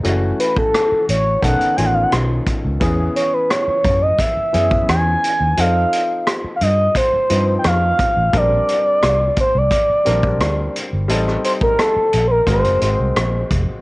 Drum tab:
HH |x-x-x-x-xxx-x-x-|x-x-x-x-x-x-x-x-|x-x-x-x-x-x-x-x-|x-x-x-x-x-x-x-x-|
SD |----r-------r-r-|----r-------r---|----r-------r---|----r-------r---|
BD |---o----o-----o-|o-----o-o--o----|--------o-----o-|o-----o-o--o----|

HH |x-x-x-x-xxx-x-x-|
SD |-r--r-------r---|
BD |---o----o-----o-|